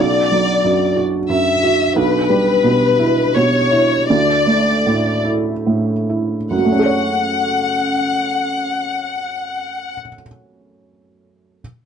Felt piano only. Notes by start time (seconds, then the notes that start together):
0.00 B1
0.32 F#3
0.64 F#2
0.96 F#4
1.29 F#2
1.63 F#4
1.96 B1
2.30 G3
2.64 B2
2.99 E4
3.36 B2
3.71 E4
4.10 D2
4.47 A3
4.87 A2
5.25 E4
5.67 A2
6.09 E4
6.51 F#2
6.58 F#3
6.65 A3
6.72 C#4
6.79 A4
6.86 C#5